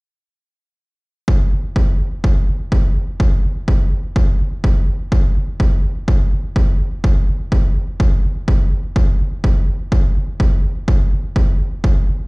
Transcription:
1.28 kick
1.76 kick
2.24 kick
2.72 kick
3.20 kick
3.68 kick
4.16 kick
4.64 kick
5.12 kick
5.60 kick
6.08 kick
6.56 kick
7.04 kick
7.52 kick
8.00 kick
8.48 kick
8.96 kick
9.44 kick
9.92 kick
10.40 kick
10.88 kick
11.36 kick
11.84 kick

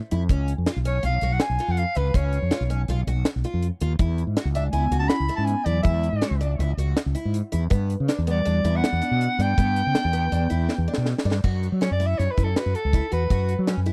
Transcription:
0.11 F2 E4, closed hi-hat
0.29 C#2 C#4, kick, closed hi-hat
0.48 closed hi-hat
0.58 F2
0.66 F4, snare, closed hi-hat
0.76 B1
0.85 C#4 C#5, closed hi-hat
1.03 B1 F4 F5, closed hi-hat
1.21 B1 F#4, closed hi-hat
1.33 F#5
1.40 G#5, snare, closed hi-hat
1.50 B1
1.59 F4, closed hi-hat
1.68 F2 F#5
1.77 F5, closed hi-hat
1.95 C#2 F4 B4, closed hi-hat
2.14 C#2 C#4 C#5, kick, closed hi-hat
2.33 closed hi-hat
2.42 F2
2.51 F4, snare, closed hi-hat
2.61 B1
2.70 C#4, closed hi-hat
2.88 B1 F4, closed hi-hat
3.07 B1 F#4, closed hi-hat
3.25 snare, closed hi-hat
3.36 B1
3.44 F4, closed hi-hat
3.54 F2
3.63 closed hi-hat
3.81 D#2 F4, closed hi-hat
3.99 E2 E4, kick, closed hi-hat
4.18 closed hi-hat
4.27 G#2
4.37 F#4, snare, closed hi-hat
4.45 C#2
4.55 G#3 D4 E5, closed hi-hat
4.72 C#2 B3 E4 G#5, closed hi-hat
4.91 C#2 F#4, closed hi-hat
4.99 C#4 A5
5.08 E4 B5, snare, closed hi-hat
5.20 C#2
5.29 E4, closed hi-hat
5.36 G#2 C#4 A5
5.44 B3 G#5, closed hi-hat
5.65 E2 F#3 E4 D5, closed hi-hat
5.82 E2 G#3 E4 E5, kick, closed hi-hat
6.03 closed hi-hat
6.13 G#2
6.21 F#4, snare, closed hi-hat
6.31 C#2
6.41 D4, closed hi-hat
6.59 C#2 E4, closed hi-hat
6.77 C#2 F#4, closed hi-hat
6.97 snare, closed hi-hat
7.06 C#2
7.15 E4, closed hi-hat
7.25 G#2
7.34 closed hi-hat
7.52 E2 E4, closed hi-hat
7.70 G2 B3, kick, closed hi-hat
7.90 closed hi-hat
8.00 C#3
8.08 D4, snare, closed hi-hat
8.18 E2
8.27 G3 B3 D5, closed hi-hat
8.45 E2 D4, closed hi-hat
8.64 E2 E4, closed hi-hat
8.76 B3 F#5
8.84 snare, closed hi-hat
8.93 E2
9.02 D4, closed hi-hat
9.11 B2
9.21 closed hi-hat
9.39 G2 B3 D4 G5, closed hi-hat
9.58 G2 B3, kick, closed hi-hat
9.76 closed hi-hat
9.87 C#3
9.95 D4, snare, closed hi-hat
10.05 E2
10.13 B3, closed hi-hat
10.32 E2 D4, closed hi-hat
10.50 E2 E4, closed hi-hat
10.69 snare
10.78 E2
10.88 D4
10.94 snare
10.98 B2
11.06 snare
11.18 snare
11.25 G2 D4
11.31 snare
11.44 F#2 F#4, kick, crash
11.63 closed hi-hat
11.72 F#3
11.81 C#4 C#5, snare, closed hi-hat
11.91 F#2 D5
12.00 E4, closed hi-hat
12.06 E5
12.18 F#2 C#5, snare, closed hi-hat
12.31 B4
12.37 F#2 E4, kick, closed hi-hat
12.43 A4
12.56 F#4 B4, snare, closed hi-hat
12.66 F#2
12.75 A4, closed hi-hat
12.85 C#2
12.93 E4, kick, snare, closed hi-hat
13.12 E2 F#4 B4, closed hi-hat
13.30 F#2 F#4, kick, closed hi-hat
13.49 closed hi-hat
13.59 F#3
13.67 C#4, snare, closed hi-hat
13.77 F#2
13.86 E4, closed hi-hat

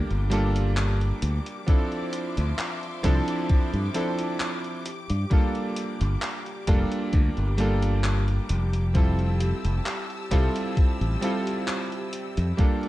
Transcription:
Already playing: G3 A#3 D4 F4 G4 A4 D6
0.10 G1, closed hi-hat
0.30 G3 A#3 D4 F4 A4, closed hi-hat
0.56 closed hi-hat
0.77 clap, closed hi-hat
1.01 closed hi-hat
1.22 D2, closed hi-hat
1.46 closed hi-hat
1.66 F3 C4 D4 E4 A4 E5 C6, kick, closed hi-hat
1.92 closed hi-hat
2.13 closed hi-hat
2.37 D2, closed hi-hat
2.59 clap, closed hi-hat
2.83 closed hi-hat
3.03 C2 F3 C4 D4 E4 A4, kick, closed hi-hat
3.28 closed hi-hat
3.49 muted fingered electric bass stroke, kick, closed hi-hat
3.73 G2, closed hi-hat
3.94 F3 C4 D4 E4 A4, closed hi-hat
4.19 closed hi-hat
4.40 clap, closed hi-hat
4.64 closed hi-hat
4.85 G4, closed hi-hat
5.10 G2, closed hi-hat
5.30 G3 A#3 D4 F4 A4, kick, closed hi-hat
5.55 closed hi-hat
5.76 closed hi-hat
6.01 G1, closed hi-hat
6.22 clap, closed hi-hat
6.46 closed hi-hat
6.67 F1 G3 A#3 D4 F4 A4, kick, closed hi-hat
6.92 closed hi-hat
7.13 D2, kick, closed hi-hat
7.37 G1, closed hi-hat
7.57 G3 A#3 D4 F4 A4, closed hi-hat
7.83 closed hi-hat
8.04 clap, closed hi-hat
8.28 closed hi-hat
8.49 F1, closed hi-hat
8.73 closed hi-hat
8.94 G3 C4 E4 F4 A4 A5 E6, kick, closed hi-hat
9.19 closed hi-hat
9.40 closed hi-hat
9.65 F1, closed hi-hat
9.86 clap, closed hi-hat
10.10 closed hi-hat
10.31 C2 G3 C4 E4 F4 A4, kick, closed hi-hat
10.56 closed hi-hat
10.77 muted fingered electric bass stroke, kick, closed hi-hat
11.01 A1, closed hi-hat
11.21 G3 C4 E4 F4 A4, closed hi-hat
11.47 closed hi-hat
11.68 clap, closed hi-hat
11.92 closed hi-hat
12.13 closed hi-hat
12.37 F2, closed hi-hat
12.57 G3 A#3 D4 F4 A4 D6, kick, closed hi-hat
12.83 closed hi-hat

